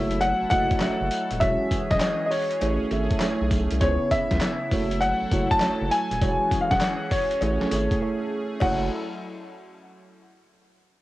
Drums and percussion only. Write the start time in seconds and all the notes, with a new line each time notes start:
0.11 closed hi-hat
0.21 closed hi-hat, cowbell
0.51 kick, closed hi-hat, tambourine
0.71 kick, closed hi-hat
0.80 snare, clap, closed hi-hat, tambourine, cowbell
1.11 closed hi-hat, tambourine
1.31 closed hi-hat
1.41 kick, closed hi-hat, tambourine, cowbell
1.71 kick, closed hi-hat, tambourine
1.91 kick, snare, closed hi-hat
2.01 snare, clap, closed hi-hat, tambourine, cowbell
2.31 open hi-hat, tambourine
2.50 closed hi-hat
2.61 closed hi-hat, cowbell
2.91 closed hi-hat, tambourine
3.10 kick, closed hi-hat
3.20 snare, clap, closed hi-hat, tambourine, cowbell
3.51 kick, closed hi-hat, tambourine
3.71 closed hi-hat
3.81 kick, closed hi-hat, tambourine, cowbell
4.11 kick, closed hi-hat, tambourine
4.31 kick, snare, closed hi-hat
4.41 snare, clap, closed hi-hat, tambourine, cowbell
4.71 kick, open hi-hat, tambourine
4.91 closed hi-hat
5.01 closed hi-hat, cowbell
5.31 kick, closed hi-hat, tambourine
5.51 kick, closed hi-hat
5.60 snare, clap, closed hi-hat, tambourine, cowbell
5.91 closed hi-hat, tambourine
6.11 closed hi-hat
6.21 kick, closed hi-hat, tambourine, cowbell
6.51 kick, closed hi-hat, tambourine
6.71 kick, snare, closed hi-hat
6.81 snare, clap, closed hi-hat, tambourine, cowbell
7.11 kick, open hi-hat, tambourine
7.31 closed hi-hat
7.41 closed hi-hat, cowbell
7.61 snare
7.72 closed hi-hat, tambourine
7.91 kick, closed hi-hat
8.60 kick, crash, cowbell